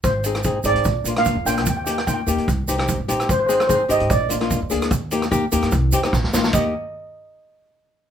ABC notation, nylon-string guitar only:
X:1
M:4/4
L:1/16
Q:"Swing 16ths" 1/4=148
K:Eb
V:1 name="Nylon-string guitar"
z2 [CEA] z [CEA] z [CEA]2 z2 [B,DF] [B,DF]2 z [B,DF]2 | z2 [B,EG] z [B,EF] z [B,EG]2 z2 [CEG] [CEG]2 z [CEG]2 | z2 [CEA] z [CEA] z [CEG]2 z2 [B,DF] [B,DF]2 z [B,DA]2 | z2 [B,EG] z [B,EG] z [B,EG]2 z2 [CEG] [CEG] z2 [B,EF]2 |
[B,EG]2 z12 z2 |]